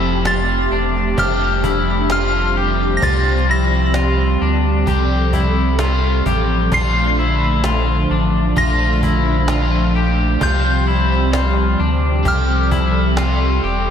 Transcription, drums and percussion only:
0, 0, Header, 1, 2, 480
1, 0, Start_track
1, 0, Tempo, 923077
1, 1574, Time_signature, 4, 2, 24, 8
1, 7230, End_track
2, 0, Start_track
2, 0, Title_t, "Cajon"
2, 132, Note_on_c, 9, 38, 119
2, 184, Note_off_c, 9, 38, 0
2, 371, Note_on_c, 9, 38, 28
2, 423, Note_off_c, 9, 38, 0
2, 611, Note_on_c, 9, 36, 104
2, 663, Note_off_c, 9, 36, 0
2, 851, Note_on_c, 9, 36, 95
2, 903, Note_off_c, 9, 36, 0
2, 1091, Note_on_c, 9, 38, 116
2, 1143, Note_off_c, 9, 38, 0
2, 1332, Note_on_c, 9, 38, 25
2, 1384, Note_off_c, 9, 38, 0
2, 1572, Note_on_c, 9, 36, 112
2, 1624, Note_off_c, 9, 36, 0
2, 1815, Note_on_c, 9, 38, 32
2, 1867, Note_off_c, 9, 38, 0
2, 2049, Note_on_c, 9, 38, 116
2, 2101, Note_off_c, 9, 38, 0
2, 2291, Note_on_c, 9, 38, 26
2, 2343, Note_off_c, 9, 38, 0
2, 2532, Note_on_c, 9, 36, 97
2, 2584, Note_off_c, 9, 36, 0
2, 2772, Note_on_c, 9, 36, 93
2, 2824, Note_off_c, 9, 36, 0
2, 3009, Note_on_c, 9, 38, 111
2, 3061, Note_off_c, 9, 38, 0
2, 3254, Note_on_c, 9, 36, 95
2, 3306, Note_off_c, 9, 36, 0
2, 3493, Note_on_c, 9, 36, 111
2, 3545, Note_off_c, 9, 36, 0
2, 3735, Note_on_c, 9, 38, 33
2, 3787, Note_off_c, 9, 38, 0
2, 3972, Note_on_c, 9, 38, 122
2, 4024, Note_off_c, 9, 38, 0
2, 4211, Note_on_c, 9, 38, 25
2, 4263, Note_off_c, 9, 38, 0
2, 4454, Note_on_c, 9, 36, 101
2, 4506, Note_off_c, 9, 36, 0
2, 4694, Note_on_c, 9, 36, 84
2, 4746, Note_off_c, 9, 36, 0
2, 4929, Note_on_c, 9, 38, 109
2, 4981, Note_off_c, 9, 38, 0
2, 5172, Note_on_c, 9, 38, 26
2, 5224, Note_off_c, 9, 38, 0
2, 5413, Note_on_c, 9, 36, 109
2, 5465, Note_off_c, 9, 36, 0
2, 5656, Note_on_c, 9, 38, 32
2, 5708, Note_off_c, 9, 38, 0
2, 5893, Note_on_c, 9, 38, 116
2, 5945, Note_off_c, 9, 38, 0
2, 6130, Note_on_c, 9, 38, 26
2, 6182, Note_off_c, 9, 38, 0
2, 6371, Note_on_c, 9, 36, 96
2, 6423, Note_off_c, 9, 36, 0
2, 6611, Note_on_c, 9, 36, 92
2, 6663, Note_off_c, 9, 36, 0
2, 6848, Note_on_c, 9, 38, 117
2, 6900, Note_off_c, 9, 38, 0
2, 7094, Note_on_c, 9, 38, 26
2, 7146, Note_off_c, 9, 38, 0
2, 7230, End_track
0, 0, End_of_file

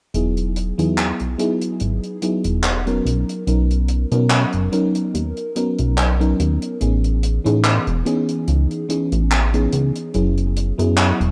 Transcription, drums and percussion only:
0, 0, Header, 1, 2, 480
1, 0, Start_track
1, 0, Key_signature, 5, "major"
1, 0, Tempo, 833333
1, 83, Time_signature, 4, 2, 24, 8
1, 6517, End_track
2, 0, Start_track
2, 0, Title_t, "Drums"
2, 82, Note_on_c, 9, 42, 64
2, 140, Note_off_c, 9, 42, 0
2, 213, Note_on_c, 9, 42, 45
2, 270, Note_off_c, 9, 42, 0
2, 323, Note_on_c, 9, 42, 86
2, 381, Note_off_c, 9, 42, 0
2, 455, Note_on_c, 9, 42, 61
2, 513, Note_off_c, 9, 42, 0
2, 560, Note_on_c, 9, 42, 64
2, 563, Note_on_c, 9, 39, 99
2, 618, Note_off_c, 9, 42, 0
2, 620, Note_off_c, 9, 39, 0
2, 690, Note_on_c, 9, 42, 36
2, 747, Note_off_c, 9, 42, 0
2, 804, Note_on_c, 9, 42, 91
2, 861, Note_off_c, 9, 42, 0
2, 931, Note_on_c, 9, 42, 64
2, 989, Note_off_c, 9, 42, 0
2, 1037, Note_on_c, 9, 42, 66
2, 1094, Note_off_c, 9, 42, 0
2, 1173, Note_on_c, 9, 42, 40
2, 1230, Note_off_c, 9, 42, 0
2, 1280, Note_on_c, 9, 42, 94
2, 1338, Note_off_c, 9, 42, 0
2, 1408, Note_on_c, 9, 42, 61
2, 1465, Note_off_c, 9, 42, 0
2, 1517, Note_on_c, 9, 39, 97
2, 1520, Note_on_c, 9, 42, 64
2, 1575, Note_off_c, 9, 39, 0
2, 1577, Note_off_c, 9, 42, 0
2, 1653, Note_on_c, 9, 42, 39
2, 1711, Note_off_c, 9, 42, 0
2, 1767, Note_on_c, 9, 42, 91
2, 1824, Note_off_c, 9, 42, 0
2, 1897, Note_on_c, 9, 42, 56
2, 1955, Note_off_c, 9, 42, 0
2, 2002, Note_on_c, 9, 42, 66
2, 2059, Note_off_c, 9, 42, 0
2, 2136, Note_on_c, 9, 42, 47
2, 2194, Note_off_c, 9, 42, 0
2, 2238, Note_on_c, 9, 42, 93
2, 2295, Note_off_c, 9, 42, 0
2, 2371, Note_on_c, 9, 42, 61
2, 2429, Note_off_c, 9, 42, 0
2, 2477, Note_on_c, 9, 39, 114
2, 2482, Note_on_c, 9, 42, 64
2, 2535, Note_off_c, 9, 39, 0
2, 2540, Note_off_c, 9, 42, 0
2, 2608, Note_on_c, 9, 42, 43
2, 2666, Note_off_c, 9, 42, 0
2, 2723, Note_on_c, 9, 42, 82
2, 2781, Note_off_c, 9, 42, 0
2, 2852, Note_on_c, 9, 42, 61
2, 2909, Note_off_c, 9, 42, 0
2, 2966, Note_on_c, 9, 42, 68
2, 3023, Note_off_c, 9, 42, 0
2, 3093, Note_on_c, 9, 42, 42
2, 3150, Note_off_c, 9, 42, 0
2, 3203, Note_on_c, 9, 42, 95
2, 3260, Note_off_c, 9, 42, 0
2, 3332, Note_on_c, 9, 42, 60
2, 3390, Note_off_c, 9, 42, 0
2, 3442, Note_on_c, 9, 39, 102
2, 3446, Note_on_c, 9, 42, 57
2, 3499, Note_off_c, 9, 39, 0
2, 3503, Note_off_c, 9, 42, 0
2, 3578, Note_on_c, 9, 42, 39
2, 3636, Note_off_c, 9, 42, 0
2, 3685, Note_on_c, 9, 42, 94
2, 3743, Note_off_c, 9, 42, 0
2, 3814, Note_on_c, 9, 42, 61
2, 3871, Note_off_c, 9, 42, 0
2, 3922, Note_on_c, 9, 42, 67
2, 3980, Note_off_c, 9, 42, 0
2, 4056, Note_on_c, 9, 42, 44
2, 4114, Note_off_c, 9, 42, 0
2, 4166, Note_on_c, 9, 42, 98
2, 4223, Note_off_c, 9, 42, 0
2, 4297, Note_on_c, 9, 42, 62
2, 4354, Note_off_c, 9, 42, 0
2, 4402, Note_on_c, 9, 39, 107
2, 4402, Note_on_c, 9, 42, 60
2, 4459, Note_off_c, 9, 39, 0
2, 4459, Note_off_c, 9, 42, 0
2, 4534, Note_on_c, 9, 42, 38
2, 4592, Note_off_c, 9, 42, 0
2, 4645, Note_on_c, 9, 42, 85
2, 4702, Note_off_c, 9, 42, 0
2, 4774, Note_on_c, 9, 42, 61
2, 4831, Note_off_c, 9, 42, 0
2, 4883, Note_on_c, 9, 42, 64
2, 4940, Note_off_c, 9, 42, 0
2, 5017, Note_on_c, 9, 42, 39
2, 5074, Note_off_c, 9, 42, 0
2, 5125, Note_on_c, 9, 42, 93
2, 5183, Note_off_c, 9, 42, 0
2, 5254, Note_on_c, 9, 42, 62
2, 5312, Note_off_c, 9, 42, 0
2, 5365, Note_on_c, 9, 39, 118
2, 5367, Note_on_c, 9, 42, 55
2, 5422, Note_off_c, 9, 39, 0
2, 5424, Note_off_c, 9, 42, 0
2, 5495, Note_on_c, 9, 42, 45
2, 5553, Note_off_c, 9, 42, 0
2, 5602, Note_on_c, 9, 42, 94
2, 5660, Note_off_c, 9, 42, 0
2, 5735, Note_on_c, 9, 42, 59
2, 5792, Note_off_c, 9, 42, 0
2, 5842, Note_on_c, 9, 42, 60
2, 5899, Note_off_c, 9, 42, 0
2, 5977, Note_on_c, 9, 42, 45
2, 6034, Note_off_c, 9, 42, 0
2, 6086, Note_on_c, 9, 42, 87
2, 6144, Note_off_c, 9, 42, 0
2, 6217, Note_on_c, 9, 42, 66
2, 6275, Note_off_c, 9, 42, 0
2, 6320, Note_on_c, 9, 39, 119
2, 6326, Note_on_c, 9, 42, 61
2, 6377, Note_off_c, 9, 39, 0
2, 6384, Note_off_c, 9, 42, 0
2, 6457, Note_on_c, 9, 42, 41
2, 6515, Note_off_c, 9, 42, 0
2, 6517, End_track
0, 0, End_of_file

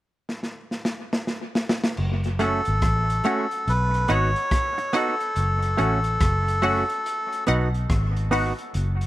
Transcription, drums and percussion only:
0, 0, Header, 1, 2, 480
1, 0, Start_track
1, 0, Tempo, 845785
1, 1122, Time_signature, 4, 2, 24, 8
1, 5145, End_track
2, 0, Start_track
2, 0, Title_t, "Drums"
2, 164, Note_on_c, 9, 38, 43
2, 220, Note_off_c, 9, 38, 0
2, 244, Note_on_c, 9, 38, 44
2, 300, Note_off_c, 9, 38, 0
2, 404, Note_on_c, 9, 38, 48
2, 461, Note_off_c, 9, 38, 0
2, 482, Note_on_c, 9, 38, 70
2, 539, Note_off_c, 9, 38, 0
2, 640, Note_on_c, 9, 38, 79
2, 697, Note_off_c, 9, 38, 0
2, 722, Note_on_c, 9, 38, 67
2, 779, Note_off_c, 9, 38, 0
2, 881, Note_on_c, 9, 38, 79
2, 938, Note_off_c, 9, 38, 0
2, 961, Note_on_c, 9, 38, 98
2, 1018, Note_off_c, 9, 38, 0
2, 1042, Note_on_c, 9, 38, 81
2, 1099, Note_off_c, 9, 38, 0
2, 1118, Note_on_c, 9, 49, 73
2, 1175, Note_off_c, 9, 49, 0
2, 1270, Note_on_c, 9, 42, 46
2, 1327, Note_off_c, 9, 42, 0
2, 1358, Note_on_c, 9, 42, 75
2, 1414, Note_off_c, 9, 42, 0
2, 1505, Note_on_c, 9, 42, 57
2, 1561, Note_off_c, 9, 42, 0
2, 1599, Note_on_c, 9, 42, 92
2, 1602, Note_on_c, 9, 36, 104
2, 1603, Note_on_c, 9, 37, 109
2, 1656, Note_off_c, 9, 42, 0
2, 1659, Note_off_c, 9, 36, 0
2, 1659, Note_off_c, 9, 37, 0
2, 1758, Note_on_c, 9, 42, 55
2, 1815, Note_off_c, 9, 42, 0
2, 1837, Note_on_c, 9, 42, 62
2, 1894, Note_off_c, 9, 42, 0
2, 1993, Note_on_c, 9, 42, 57
2, 2050, Note_off_c, 9, 42, 0
2, 2086, Note_on_c, 9, 42, 71
2, 2143, Note_off_c, 9, 42, 0
2, 2237, Note_on_c, 9, 42, 51
2, 2293, Note_off_c, 9, 42, 0
2, 2316, Note_on_c, 9, 42, 67
2, 2373, Note_off_c, 9, 42, 0
2, 2474, Note_on_c, 9, 42, 44
2, 2530, Note_off_c, 9, 42, 0
2, 2562, Note_on_c, 9, 36, 109
2, 2563, Note_on_c, 9, 37, 99
2, 2563, Note_on_c, 9, 42, 82
2, 2618, Note_off_c, 9, 36, 0
2, 2620, Note_off_c, 9, 37, 0
2, 2620, Note_off_c, 9, 42, 0
2, 2715, Note_on_c, 9, 42, 45
2, 2771, Note_off_c, 9, 42, 0
2, 2798, Note_on_c, 9, 42, 75
2, 2855, Note_off_c, 9, 42, 0
2, 2953, Note_on_c, 9, 42, 46
2, 3010, Note_off_c, 9, 42, 0
2, 3041, Note_on_c, 9, 42, 78
2, 3097, Note_off_c, 9, 42, 0
2, 3192, Note_on_c, 9, 42, 53
2, 3249, Note_off_c, 9, 42, 0
2, 3281, Note_on_c, 9, 42, 79
2, 3338, Note_off_c, 9, 42, 0
2, 3428, Note_on_c, 9, 42, 56
2, 3484, Note_off_c, 9, 42, 0
2, 3521, Note_on_c, 9, 42, 97
2, 3522, Note_on_c, 9, 36, 120
2, 3525, Note_on_c, 9, 37, 99
2, 3578, Note_off_c, 9, 42, 0
2, 3579, Note_off_c, 9, 36, 0
2, 3581, Note_off_c, 9, 37, 0
2, 3679, Note_on_c, 9, 42, 60
2, 3736, Note_off_c, 9, 42, 0
2, 3757, Note_on_c, 9, 46, 52
2, 3814, Note_off_c, 9, 46, 0
2, 3914, Note_on_c, 9, 42, 60
2, 3971, Note_off_c, 9, 42, 0
2, 4007, Note_on_c, 9, 42, 69
2, 4063, Note_off_c, 9, 42, 0
2, 4157, Note_on_c, 9, 42, 54
2, 4214, Note_off_c, 9, 42, 0
2, 4237, Note_on_c, 9, 42, 68
2, 4294, Note_off_c, 9, 42, 0
2, 4395, Note_on_c, 9, 42, 45
2, 4452, Note_off_c, 9, 42, 0
2, 4481, Note_on_c, 9, 36, 103
2, 4482, Note_on_c, 9, 42, 80
2, 4483, Note_on_c, 9, 37, 101
2, 4538, Note_off_c, 9, 36, 0
2, 4539, Note_off_c, 9, 37, 0
2, 4539, Note_off_c, 9, 42, 0
2, 4634, Note_on_c, 9, 42, 48
2, 4691, Note_off_c, 9, 42, 0
2, 4717, Note_on_c, 9, 46, 62
2, 4774, Note_off_c, 9, 46, 0
2, 4873, Note_on_c, 9, 42, 46
2, 4929, Note_off_c, 9, 42, 0
2, 4961, Note_on_c, 9, 42, 82
2, 5018, Note_off_c, 9, 42, 0
2, 5114, Note_on_c, 9, 42, 53
2, 5145, Note_off_c, 9, 42, 0
2, 5145, End_track
0, 0, End_of_file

